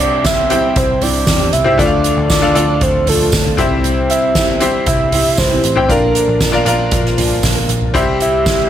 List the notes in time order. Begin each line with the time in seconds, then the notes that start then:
Already playing: C2 G2 C3 G3 C4 E4 G4 C5 E5
0.00 D5
0.24 G3 C4 E4 G4 E5, kick, snare, hi-hat pedal, open hi-hat, tambourine
0.49 G3 C4 E4 G4 C5 G5, hi-hat pedal, open hi-hat
0.76 C2 C5, kick, hi-hat pedal, open hi-hat
1.01 C3 G3 C4 E4 G4 D5, floor tom, hi-hat pedal, open hi-hat
1.27 E2, kick, snare, hi-hat pedal, open hi-hat, tambourine
1.39 C4 E4 G4
1.53 C2 E5, hi-hat pedal, open hi-hat
1.64 C4 E4 G4 C5 E5, floor tom
1.78 D2 A2 D3 F3 A3 D4 F4 A4 D5 E5, kick, hi-hat pedal, open hi-hat
1.85 F5
2.04 hi-hat pedal, open hi-hat
2.17 D2
2.29 F3 A3 D4 F4 D5, kick, snare, hi-hat pedal, open hi-hat, tambourine
2.41 D4 F4 A4 D5 F5
2.54 D2 F3 A3 D4 F4 A4 D5 F5, hi-hat pedal, open hi-hat
2.58 F4
2.81 D2 C5, kick, hi-hat pedal, open hi-hat
3.07 D3 F3 A3 D4 F4 A4, floor tom, hi-hat pedal, open hi-hat
3.32 D2, kick, snare, hi-hat pedal, open hi-hat, tambourine
3.45 A3 D4 F4, floor tom
3.57 C2 G2 C3 G3 C4 E4 G4 C5 E5, kick, hi-hat pedal, open hi-hat
3.71 floor tom
3.84 hi-hat pedal, open hi-hat
4.10 E5, hi-hat pedal, open hi-hat
4.35 G3 C4 E4 G4, kick, snare, hi-hat pedal, open hi-hat, tambourine
4.60 G3 C4 E4 G4 C5 E5, hi-hat pedal, open hi-hat
4.86 C2 E5, kick, hi-hat pedal, open hi-hat
5.12 C3 G3 C4 E4 G4, floor tom, hi-hat pedal, open hi-hat
5.37 C2 E3 E4 C5, kick, snare, hi-hat pedal, open hi-hat, tambourine
5.50 C4 E4 G4
5.64 A1, hi-hat pedal, open hi-hat
5.76 C4 E4 G4 C5 G5, floor tom
5.88 A#1 D3 F3 A#3 D4 F4 A#4 D5 F5, kick, hi-hat pedal, open hi-hat
6.15 hi-hat pedal, open hi-hat
6.28 A#1
6.40 F3 A#3 D4 A#4, kick, snare, hi-hat pedal, open hi-hat, tambourine
6.52 D4 F4 A#4 D5 F5
6.65 A#1 F3 A#3 D4 F4 A#4 D5 F5, hi-hat pedal, open hi-hat
6.91 A#1 F3 F4, kick, hi-hat pedal, open hi-hat
7.05 snare
7.17 A#2 F3 A#3 D4 A#4, floor tom, hi-hat pedal, open hi-hat
7.43 A#1, kick, snare, hi-hat pedal, open hi-hat, tambourine
7.55 A#3 D4 A#4
7.69 A#1, hi-hat pedal, open hi-hat
7.82 floor tom
7.94 C2 G2 G3 C4 E4 G4 C5 E5, kick, hi-hat pedal, open hi-hat
8.21 E5, hi-hat pedal, open hi-hat
8.45 G3 C4 E4 G4, kick, snare, hi-hat pedal, open hi-hat, tambourine